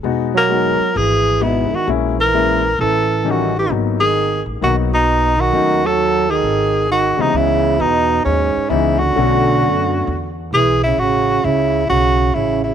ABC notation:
X:1
M:4/4
L:1/8
Q:"Swing" 1/4=132
K:G#m
V:1 name="Tenor saxophone"
z A3 G2 E F | z A3 =A2 F =G | z G2 z F D2 F- | F =A2 G3 F D |
[K:C#m] E2 D2 C2 E F- | F4- F z G E | F2 E2 F2 E E |]
V:2 name="Grand piano"
[G,B,DF] z [G,B,DF] z3 [G,B,DG] z | [G,A,CE] z [G,A,CE] z3 [E,=G,CD] z | [F,A,B,D] z3 [F,A,B,D] z3 | [F,=A,CD] z6 [C,,E,G,B,d]- |
[K:C#m] [C,,E,G,B,d]2 z4 [E,G,B,CD] z | [=D,A,B,CF]4 z4 | z8 |]
V:3 name="Trombone" clef=bass
z F,3 E,2 B,, D, | z E,3 E,2 D, E, | z D,2 z D, B,,2 D,- | D, F,2 D,3 D, ^B,, |
[K:C#m] C,2 B,,2 G,,2 C, =D,- | =D,4- D, z E, C, | C,2 C,2 C,2 C, C, |]
V:4 name="Upright bass" clef=bass
E,,,3 z G,,,3 z | A,,,4 =A,,,4 | G,,,3 =A,,, B,,,4 | D,,4 G,,,3 z |
[K:C#m] C,,2 E,,2 D,, z C,,2 | B,,,2 F,,2 E,,2 B,,,2 | A,,,2 C,,2 B,,,2 A,,,2 |]